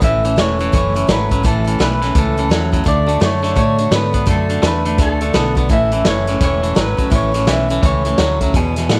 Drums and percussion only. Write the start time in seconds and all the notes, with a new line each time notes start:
0.02 kick, closed hi-hat
0.25 closed hi-hat
0.38 snare, closed hi-hat
0.60 closed hi-hat
0.73 kick, closed hi-hat
0.96 closed hi-hat
1.09 snare, closed hi-hat
1.31 kick, closed hi-hat
1.45 kick, closed hi-hat
1.67 closed hi-hat
1.80 snare, closed hi-hat
2.02 snare, closed hi-hat
2.15 kick, closed hi-hat
2.37 closed hi-hat
2.51 snare, closed hi-hat
2.73 kick, closed hi-hat
2.86 kick, closed hi-hat
3.08 closed hi-hat
3.21 snare, closed hi-hat
3.44 snare, closed hi-hat
3.56 kick, closed hi-hat
3.78 closed hi-hat
3.92 snare, closed hi-hat
4.14 kick, closed hi-hat
4.26 kick, closed hi-hat
4.50 closed hi-hat
4.63 snare, closed hi-hat
4.85 closed hi-hat
4.98 kick, snare, closed hi-hat
5.21 closed hi-hat
5.34 snare, closed hi-hat
5.57 kick, closed hi-hat
5.70 kick, closed hi-hat
5.91 closed hi-hat
6.05 snare, closed hi-hat
6.27 snare, closed hi-hat
6.40 kick, snare, closed hi-hat
6.63 closed hi-hat
6.76 snare, closed hi-hat
6.98 kick, closed hi-hat
7.11 kick, closed hi-hat
7.34 snare, closed hi-hat
7.47 snare, closed hi-hat
7.70 closed hi-hat
7.83 kick, closed hi-hat
8.05 closed hi-hat
8.18 snare, closed hi-hat
8.41 kick, closed hi-hat
8.54 kick, closed hi-hat
8.76 snare, closed hi-hat
8.89 snare, closed hi-hat